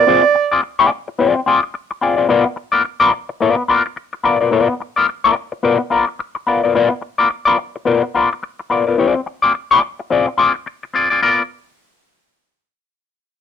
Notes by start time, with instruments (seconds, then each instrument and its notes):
Already playing: alto saxophone D5
0.07 clean electric guitar C4 F4 G#4 D5
0.24 muted clean electric guitar stroke
0.35 muted clean electric guitar stroke
0.52 clean electric guitar C4 F4 G#4 D5
0.62 muted clean electric guitar stroke
0.79 clean electric guitar C4 F4 G#4 D5
1.08 muted clean electric guitar stroke
1.19 clean electric guitar C4 F4 G#4 D5
1.35 muted clean electric guitar stroke
1.46 clean electric guitar C4 F4 G#4 D5
1.63 muted clean electric guitar stroke
1.74 muted clean electric guitar stroke
1.91 muted clean electric guitar stroke
2.01 clean electric guitar C4 F4 G#4 D5
2.16 clean electric guitar C4 F4 G#4 D5
2.29 clean electric guitar B3 F4 A#4 D5
2.45 muted clean electric guitar stroke
2.56 muted clean electric guitar stroke
2.72 clean electric guitar B3 F4 A#4 D5
2.84 muted clean electric guitar stroke
3.00 clean electric guitar B3 F4 A#4 D5
3.12 muted clean electric guitar stroke
3.29 muted clean electric guitar stroke
3.40 clean electric guitar B3 F4 A#4 D5
3.57 muted clean electric guitar stroke
3.68 clean electric guitar B3 F4 A#4 D5
3.86 muted clean electric guitar stroke
3.96 muted clean electric guitar stroke
4.13 muted clean electric guitar stroke
4.24 clean electric guitar B3 F4 A#4 D5
4.41 clean electric guitar B3 F4 A#4 D5
4.51 clean electric guitar B3 F4 A#4 D5
4.69 muted clean electric guitar stroke
4.80 muted clean electric guitar stroke
4.96 clean electric guitar B3 F4 A#4 D5
5.09 muted clean electric guitar stroke
5.24 clean electric guitar B3 F4 A#4 D5
5.35 muted clean electric guitar stroke
5.52 muted clean electric guitar stroke
5.63 clean electric guitar B3 F4 A#4 D5
5.79 muted clean electric guitar stroke
5.90 clean electric guitar B3 F4 A#4 D5
6.19 muted clean electric guitar stroke
6.35 muted clean electric guitar stroke
6.47 clean electric guitar B3 F4 A#4 D5
6.64 clean electric guitar B3 F4 A#4 D5
6.75 clean electric guitar B3 F4 A#4 D5
6.90 muted clean electric guitar stroke
7.02 muted clean electric guitar stroke
7.18 clean electric guitar B3 F4 A#4 D5
7.29 muted clean electric guitar stroke
7.45 clean electric guitar B3 F4 A#4 D5
7.58 muted clean electric guitar stroke
7.76 muted clean electric guitar stroke
7.85 clean electric guitar B3 F4 A#4 D5
8.03 muted clean electric guitar stroke
8.15 clean electric guitar B3 F4 A#4 D5
8.33 muted clean electric guitar stroke
8.43 muted clean electric guitar stroke
8.59 muted clean electric guitar stroke
8.70 clean electric guitar B3 F4 A#4 D5
8.87 clean electric guitar B3 F4 A#4 D5
8.98 clean electric guitar C4 F4 G#4 D5
9.15 muted clean electric guitar stroke
9.26 muted clean electric guitar stroke
9.42 clean electric guitar C4 F4 G#4 D5
9.54 muted clean electric guitar stroke
9.71 clean electric guitar C4 F4 G#4 D5
9.82 muted clean electric guitar stroke
9.99 muted clean electric guitar stroke
10.10 clean electric guitar C4 F4 G#4 D5
10.27 muted clean electric guitar stroke
10.38 clean electric guitar C4 F4 G#4 D5
10.54 muted clean electric guitar stroke
10.66 muted clean electric guitar stroke
10.83 muted clean electric guitar stroke
10.94 clean electric guitar C4 F4 G#4 D5
11.10 clean electric guitar C4 F4 G#4 D5
11.22 clean electric guitar B3 F4 A#4 D5